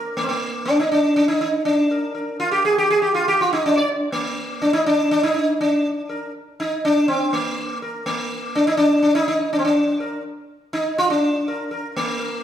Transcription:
Already playing: A#4
0.17 A#3
0.24 C4
0.29 A#3
0.65 D4
0.80 D#4
0.92 D4
1.16 D4
1.28 D#4
1.41 D#4
1.65 D4
1.91 A#4
2.15 A#4
2.40 F4
2.52 G4
2.65 G#4
2.78 G4
2.90 G#4
3.02 G4
3.14 F4
3.28 G4
3.41 F4
3.53 D#4
3.66 D4
3.77 D5
4.12 A#3
4.62 D4
4.73 D#4
4.86 D4
5.11 D4
5.23 D#4
5.34 D#4
5.61 D4
6.09 A#4
6.60 D#4
6.85 D4
7.08 C4
7.33 A#3
7.82 A#4
8.06 A#3
8.55 D4
8.67 D#4
8.77 D4
9.03 D4
9.15 D#4
9.28 D#4
9.53 D4
9.59 C4
9.65 D4
10.00 A#4
10.73 D#4
10.98 F4
11.10 D4
11.48 A#4
11.71 A#4
11.96 A#3
12.19 A#4

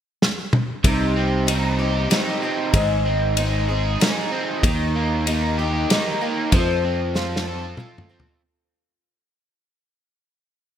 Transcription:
0.22 snare
0.53 mid tom
0.84 C2 C3 G3 C4 D#4 G4, kick, ride
1.16 C4
1.47 G3 C4 D#4 G4, ride
1.78 C4 D#4 G4
2.10 G3 C4 D#4 G4, snare, ride
2.42 C4 D#4 G4
2.74 G#1 G#2 D#3 G#3 C4 D#4 G#4, kick, ride
3.05 C4
3.37 G#3 C4 D#4 G#4, ride
3.69 G#3 C4 D#4 G#4
4.00 G#3 C4 D#4 G#4, snare, ride
4.32 C4
4.63 D#2 D#3 A#3 D#4 G4, kick, ride
4.95 A#3
5.27 D#3 A#3 D#4 G4, ride
5.59 A#3 D#4 G4
5.90 D#3 A#3 D#4 G4, snare, ride
6.21 A#3 D#4 G4
6.52 F2 C3 F3 A3 C4 A4, kick, ride
6.85 C4
7.15 F3 A3 C4 F4 A4, snare
7.36 snare
7.47 F3 A3 C4 A4
7.77 F3 A3 C4 F4 A4, mid tom
7.98 mid tom
8.09 F3 A3 C4 A4
8.20 floor tom

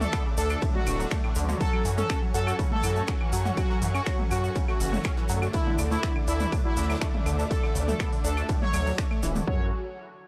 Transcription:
Already playing: D3 A3 D4 A4 D5 E5 D6
0.01 A3 A4, snare, mid tom, shaker
0.12 B3, finger snap, kick, snare, closed hi-hat, ride, claves, shaker
0.26 C#3
0.37 D2 D4 A4, closed hi-hat, open hi-hat, shaker
0.50 D4, claves, shaker
0.62 A2, kick, ride, shaker
0.75 F#3 F#4, mid tom
0.87 D1 A2 D3 A3 D4, open hi-hat, claves, shaker
0.99 F#3, shaker
1.11 A3, finger snap, kick, snare, closed hi-hat, ride, shaker
1.24 A2, snare, claves
1.35 D2 D3 F#3 C#4 F#4, closed hi-hat, open hi-hat, shaker
1.49 D3, mid tom, shaker
1.60 F#3 A4 F#5 G#5 C#6, kick, closed hi-hat, ride, shaker
1.73 F#3, claves
1.85 F#2 E3, closed hi-hat, open hi-hat, shaker
1.97 C#4 A4, snare, mid tom, shaker
2.09 C#4, finger snap, kick, snare, closed hi-hat, ride, claves, shaker
2.22 F#3
2.34 F#2 F#4 A4, closed hi-hat, open hi-hat, shaker
2.47 F#4, claves, shaker
2.59 C#3, kick, closed hi-hat, ride, shaker
2.72 A3 A4, mid tom
2.83 F#2 E3 F#3 C#4 F#4, closed hi-hat, open hi-hat, claves, shaker
2.96 A3, shaker
3.07 C#4, finger snap, kick, snare, closed hi-hat, ride, shaker
3.21 E3, claves
3.32 F#2 F#3 C#4 F#4, closed hi-hat, open hi-hat, shaker
3.45 F#4, snare, mid tom, shaker
3.57 F#3 F#4, kick, closed hi-hat, ride, claves, shaker
3.70 F#3, snare
3.82 F#2 E3, closed hi-hat, open hi-hat, shaker
3.95 C#4 F#4, snare, claves, shaker
4.06 C#4, finger snap, kick, snare, closed hi-hat, ride, shaker
4.19 F#3, mid tom
4.31 F#2 F#4, closed hi-hat, open hi-hat, claves, shaker
4.44 F#4, shaker
4.55 C#3, kick, closed hi-hat, ride, shaker
4.68 A3 F#4, snare, claves
4.80 F#1 E3 F#3 C#4 F#4, open hi-hat, shaker
4.93 A3, mid tom, shaker
5.04 C#4, finger snap, kick, snare, closed hi-hat, ride, claves, shaker
5.17 E3, snare, closed hi-hat
5.29 F#2 D3 F#3 A3 D4, closed hi-hat, open hi-hat, shaker
5.42 F#4, claves, shaker
5.53 D3 E4 D5 E5 D6, kick, closed hi-hat, ride, shaker
5.67 D3, mid tom
5.78 D2 C#3, closed hi-hat, open hi-hat, claves, shaker
5.91 A3 E4, snare, shaker
6.03 B3, finger snap, kick, snare, closed hi-hat, ride, shaker
6.16 D3, claves
6.28 D2 D4 E4, closed hi-hat, open hi-hat, shaker
6.40 D4, mid tom, shaker
6.52 A2, kick, closed hi-hat, ride, claves, shaker
6.65 F#3 E4
6.77 D2 C#3 D3 A3 D4, snare, closed hi-hat, open hi-hat, shaker
6.83 snare, closed hi-hat
6.90 F#3, snare, closed hi-hat, claves, shaker
6.95 snare, closed hi-hat
7.01 A3, finger snap, kick, snare, closed hi-hat, ride, shaker
7.14 C#3, mid tom
7.26 D2 D3 A3 D4, closed hi-hat, open hi-hat, claves, shaker
7.38 D4, snare, shaker
7.51 D3 A4, kick, closed hi-hat, ride, shaker
7.63 D3, snare, claves
7.75 D2 C#3, closed hi-hat, open hi-hat, shaker
7.88 A3 A4, snare, mid tom, shaker
7.99 B3, finger snap, kick, snare, closed hi-hat, ride, claves, shaker
8.13 D3, open hi-hat
8.24 D2 D4 A4, closed hi-hat, open hi-hat, shaker
8.37 D4, claves, shaker
8.49 A2, kick, closed hi-hat, ride, shaker
8.62 F#3 C#5, snare, mid tom
8.73 D2 F#3, open hi-hat, claves, shaker
8.86 F#3, shaker
8.98 D4, finger snap, kick, snare, ride, shaker
9.11 A3, snare, claves
9.23 D1 E3, snare, closed hi-hat, open hi-hat, shaker
9.36 D3, mid tom, shaker
9.47 F#2 F#3 C#4 F#4 G#4 A4 C#5, kick

